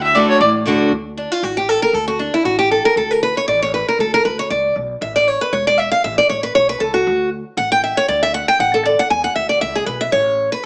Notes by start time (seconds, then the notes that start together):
Already playing: D2 D3
0.03 E5
0.15 D3 A3 D4 F#4 D5
0.29 C#5
0.40 A1 A2 D5
0.66 D3 A3 D4 F#4
0.91 D2
1.17 D4
1.32 F4
1.42 A1 F#4
1.57 G4
1.69 A4
1.82 A#4
1.93 D2 A4
2.08 F#4
2.19 D4
2.34 E4
2.44 A1 F#4
2.59 G4
2.71 A4
2.85 A#4
2.96 D2 A4
3.11 A#4
3.23 B4
3.37 C#5
3.48 A1 D5
3.62 C#5
3.74 B4
3.88 A#4
3.99 D2 A4
4.14 A#4
4.25 D2 B4
4.39 C#5
4.50 C#2 D5
4.76 B1
5.01 A1 E5
5.16 D5
5.28 C#5
5.41 B4
5.53 E1 C#5
5.67 D5
5.78 E5
5.92 F5
6.04 A1 E5
6.18 D5
6.29 A1 C#5
6.43 B4
6.55 B1 C#5
6.69 B4
6.80 C#2 A4
6.94 F#4
7.07 D2
7.57 A1 F#5
7.72 G5
7.84 E5
7.97 C#5
8.08 D2 D5
8.23 E5
8.34 F#5
8.48 G5
8.59 A1 F#5
8.74 A4
8.85 D5
8.99 F#5
9.10 E2 G#5
9.24 F#5
9.35 D2 E5
9.49 D5
9.61 C#2 E5
9.75 G#4
9.86 B1 B4
10.01 E5
10.12 A1 C#5
10.52 B4